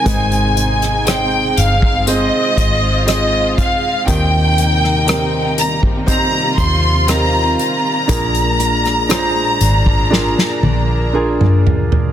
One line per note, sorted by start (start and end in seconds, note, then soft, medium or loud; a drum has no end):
0.00 4.04 C3 medium
0.00 0.16 A#3 medium
0.00 0.16 D#4 soft
0.00 2.03 D#4 medium
0.00 0.16 A#4 soft
0.00 1.08 G#5 medium
0.04 1.53 G#1 medium
0.04 1.53 G#2 medium
0.04 1.53 D#3 medium
0.04 4.04 G#3 medium
0.04 4.08 G#3 medium
0.04 1.01 C4 medium
0.04 1.01 D#4 medium
0.04 1.02 G#4 medium
0.04 0.12 B4 medium
0.04 kick medium
0.04 closed hi-hat medium
0.12 1.05 C5 medium
0.32 closed hi-hat soft
0.56 4.18 D#4 soft
0.56 closed hi-hat medium
0.82 cross-stick soft
0.82 closed hi-hat soft
1.05 2.02 C4 medium
1.05 2.02 D#4 medium
1.05 2.03 G#4 medium
1.05 2.03 C5 medium
1.05 1.58 G5 medium
1.05 cross-stick loud
1.05 closed hi-hat medium
1.57 2.29 G1 medium
1.57 2.08 F5 medium
1.57 closed hi-hat medium
1.82 kick medium
2.06 3.02 C4 medium
2.06 4.61 C4 medium
2.06 3.03 D#4 medium
2.06 4.06 F4 medium
2.06 3.03 G#4 medium
2.06 3.03 C5 medium
2.06 3.05 D#5 medium
2.06 closed hi-hat medium
2.57 3.54 G#1 medium
2.57 4.61 C5 medium
2.57 kick medium
2.57 closed hi-hat medium
3.06 4.02 C4 medium
3.06 4.02 D#4 medium
3.06 4.03 G#4 medium
3.06 4.18 G#4 medium
3.06 4.03 D#5 medium
3.06 3.55 D#5 medium
3.06 cross-stick medium
3.06 closed hi-hat medium
3.58 4.09 F5 medium
3.58 kick medium
3.58 closed hi-hat medium
4.06 6.54 D#2 medium
4.06 5.54 A#2 medium
4.06 8.06 C3 medium
4.06 8.09 D#3 medium
4.06 8.06 G3 medium
4.06 5.02 C4 medium
4.06 5.03 D#4 medium
4.06 6.07 D#4 medium
4.06 5.03 G4 medium
4.06 5.03 A#4 medium
4.06 5.55 G5 loud
4.06 kick medium
4.06 closed hi-hat medium
4.58 8.08 A#3 medium
4.58 closed hi-hat medium
4.84 cross-stick soft
5.06 6.02 C4 medium
5.06 6.03 D#4 medium
5.06 6.03 G4 medium
5.06 6.03 A#4 medium
5.06 cross-stick loud
5.06 closed hi-hat medium
5.58 5.80 A#5 medium
5.58 closed hi-hat medium
5.83 kick medium
6.06 7.03 C4 medium
6.06 8.08 C4 medium
6.06 7.03 D#4 medium
6.06 8.08 F4 medium
6.06 7.03 G4 medium
6.06 7.04 C5 medium
6.06 6.56 A#5 loud
6.06 kick medium
6.06 closed hi-hat medium
6.58 7.55 D#2 medium
6.58 8.19 C5 medium
6.58 7.09 C6 medium
6.58 kick medium
6.58 closed hi-hat medium
7.07 8.04 C4 medium
7.07 8.04 D#4 medium
7.07 8.19 G4 medium
7.07 8.04 G4 medium
7.07 8.04 A#4 medium
7.07 7.59 A#5 medium
7.07 cross-stick medium
7.07 closed hi-hat medium
7.59 11.11 A#5 medium
7.59 closed hi-hat medium
8.08 9.57 A#1 medium
8.08 12.12 A#2 medium
8.08 10.10 G#3 medium
8.08 12.12 A#3 medium
8.08 9.05 D4 medium
8.08 12.12 D4 medium
8.08 9.05 F4 medium
8.08 9.05 G#4 medium
8.08 9.06 A#4 medium
8.08 kick medium
8.08 closed hi-hat medium
8.35 closed hi-hat soft
8.59 10.11 F4 soft
8.59 closed hi-hat medium
8.85 cross-stick soft
8.85 closed hi-hat soft
9.09 10.06 D4 medium
9.09 10.06 F4 medium
9.09 10.07 G#4 medium
9.09 10.07 C5 medium
9.09 cross-stick loud
9.09 closed hi-hat medium
9.61 10.33 G#1 medium
9.61 closed hi-hat medium
9.86 kick medium
10.10 12.12 A#3 medium
10.10 11.09 D4 medium
10.10 11.09 F4 medium
10.10 12.12 F4 medium
10.10 11.09 G#4 medium
10.10 11.10 A#4 medium
10.10 snare soft
10.38 snare soft
10.63 11.62 A#1 medium
10.63 12.12 D5 medium
10.63 high tom medium
11.13 12.12 D4 medium
11.13 12.12 F4 medium
11.13 12.12 G#4 soft
11.13 12.12 G#4 medium
11.13 12.12 A#4 medium
11.41 mid tom medium
11.67 floor tom medium
11.92 floor tom medium